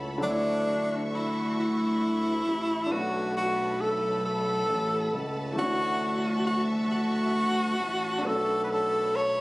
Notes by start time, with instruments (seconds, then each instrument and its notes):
Already playing: analog synth bass C#2, grand piano A3 B3 C#4 D4 F#4, string section A4 C#5 A5 B5
0.18 grand piano D3 F#3
0.23 analog synth bass D2, grand piano A3 C#5, tenor saxophone D4, string section F#4 E5 C#6
0.29 grand piano E4
1.14 tenor saxophone E4
1.59 tenor saxophone E4
2.46 analog synth bass A1
2.86 analog synth bass B1, grand piano A3 D4, string section A4
2.91 grand piano B3, tenor saxophone F#4, string section B4 A5 B5
2.95 grand piano C#4 F#4
3.37 tenor saxophone F#4
3.81 tenor saxophone A4
4.26 tenor saxophone A4
4.68 analog synth bass A1
5.13 analog synth bass C#2
5.53 analog synth bass D2, grand piano E3 A3
5.57 grand piano C#4, string section F#4 E5 C#6, tenor saxophone F#4
5.62 grand piano D4 E4
5.71 grand piano F#4
6.47 tenor saxophone F#4
6.92 tenor saxophone F#4
7.79 analog synth bass A1
8.18 grand piano A3 D4
8.23 analog synth bass B1, grand piano B3, string section A4 C#5 B5, tenor saxophone A4
8.27 grand piano C#4 F#4
8.64 tenor saxophone B4
8.70 tenor saxophone A4
9.16 tenor saxophone C#5